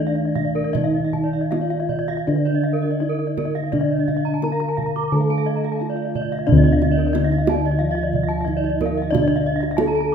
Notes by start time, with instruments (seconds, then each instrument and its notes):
Already playing: kettle gongs D#3, bronze metallophone A3 D4
0.07 bronze metallophone F5
0.15 bronze metallophone D5
0.25 bronze metallophone D#5
0.35 bronze metallophone F5, kendang slap, kendang low
0.45 bronze metallophone D5
0.55 bronze metallophone A#4, kendang slap
0.64 bronze metallophone D5
0.73 bronze metallophone D#3 D#4 D#5, kettle gongs D#4, kendang high, kendang low
0.84 bronze metallophone F5
0.94 bronze metallophone D#5
1.04 bronze metallophone F5
1.13 bronze metallophone A5, kendang slap, kendang low
1.24 bronze metallophone D5
1.33 bronze metallophone F5
1.41 bronze metallophone D#5
1.51 kettle gongs D#4, bronze metallophone F4 F5, kendang high
1.61 bronze metallophone D5
1.70 bronze metallophone F5, kendang slap
1.80 bronze metallophone D#5
1.89 bronze metallophone D5, kendang slap, kendang low
1.99 bronze metallophone D#5
2.08 bronze metallophone F5, kendang slap
2.17 bronze metallophone D#5
2.27 bronze metallophone D3 D4 D5, kettle gongs D3, kendang slap
2.36 bronze metallophone D#5
2.45 bronze metallophone D5, kendang slap
2.55 bronze metallophone D#5
2.63 bronze metallophone F5
2.73 bronze metallophone A#4
2.82 bronze metallophone D#5, kendang slap
2.91 bronze metallophone D5
3.00 bronze metallophone D#4 D#5, kettle gongs D#4, kendang slap
3.09 bronze metallophone A#4
3.19 bronze metallophone D#5
3.27 bronze metallophone D5
3.37 bronze metallophone A#4, kendang slap, kendang high, kendang low
3.45 bronze metallophone D#5
3.55 bronze metallophone F5, kendang slap
3.64 bronze metallophone D#5
3.72 bronze metallophone D3 D4 D5, kettle gongs D4, kendang high, kendang low
3.81 bronze metallophone D#5
3.91 bronze metallophone D5
3.99 bronze metallophone D#5
4.08 bronze metallophone F5, kendang slap, kendang low
4.17 bronze metallophone D#5
4.25 bronze metallophone A#5
4.34 bronze metallophone A5
4.42 kettle gongs D#4, bronze metallophone A#4 A#5, kendang high
4.52 bronze metallophone F5
4.60 bronze metallophone A#5, kendang slap
4.69 bronze metallophone A5
4.77 bronze metallophone F5, kendang slap, kendang low
4.86 bronze metallophone A#5
4.96 bronze metallophone D6, kendang slap
5.03 bronze metallophone A#5
5.12 kettle gongs D3, bronze metallophone A3 A4 A5, kendang slap
5.20 bronze metallophone F5
5.30 bronze metallophone A5, kendang slap
5.38 bronze metallophone F5
5.46 bronze metallophone D#5
5.56 bronze metallophone A#5
5.64 bronze metallophone F5, kendang slap
5.72 bronze metallophone A5
5.79 kettle gongs D#4, bronze metallophone F4 F5, kendang slap
5.90 bronze metallophone D5
5.96 bronze metallophone F5
6.05 bronze metallophone D#5
6.15 bronze metallophone D5, kendang slap, kendang low
6.22 bronze metallophone D#5
6.32 bronze metallophone F5, kendang slap
6.39 bronze metallophone D#5
6.47 bronze metallophone D3 D4 D5, kettle gongs D4, kendang low
6.52 kettle gongs D2
6.57 bronze metallophone D#5
6.64 bronze metallophone D5, kendang slap
6.72 bronze metallophone F5
6.82 bronze metallophone D#5, kendang high
6.91 bronze metallophone D5
6.98 bronze metallophone A#4, kendang slap
7.07 bronze metallophone D5
7.13 kettle gongs D#4, bronze metallophone D#4 D#5, kendang high
7.24 bronze metallophone F5
7.32 bronze metallophone D#5, kendang slap
7.38 bronze metallophone F5
7.47 bronze metallophone A5, kendang high
7.55 bronze metallophone D5
7.66 bronze metallophone D#5, kendang slap
7.71 bronze metallophone D5
7.79 bronze metallophone F3 F4 F5
7.91 bronze metallophone D#5
7.95 bronze metallophone F5, kendang slap
8.03 bronze metallophone D5
8.13 bronze metallophone D#5, kendang low
8.23 bronze metallophone F5
8.29 bronze metallophone A5, kendang slap
8.41 bronze metallophone D#5 F5
8.46 kettle gongs D#4, bronze metallophone D#4, kendang low
8.57 bronze metallophone D5
8.64 bronze metallophone D#5, kendang slap
8.70 bronze metallophone D5
8.81 bronze metallophone A#4, kendang high, kendang low
8.86 bronze metallophone F5
8.97 bronze metallophone D#5, kendang slap
9.02 bronze metallophone F5
9.11 bronze metallophone D3 D4 D5, kettle gongs D4, kendang high, kendang low
9.22 bronze metallophone D#5
9.28 bronze metallophone D5, kendang slap
9.36 bronze metallophone F5
9.46 bronze metallophone D#5
9.56 bronze metallophone F5
9.61 bronze metallophone D#5, kendang slap
9.71 bronze metallophone F5
9.77 kettle gongs D#4, bronze metallophone A4 A5, kendang high
9.87 bronze metallophone A#5
9.95 bronze metallophone A5, kendang slap
10.01 bronze metallophone A#5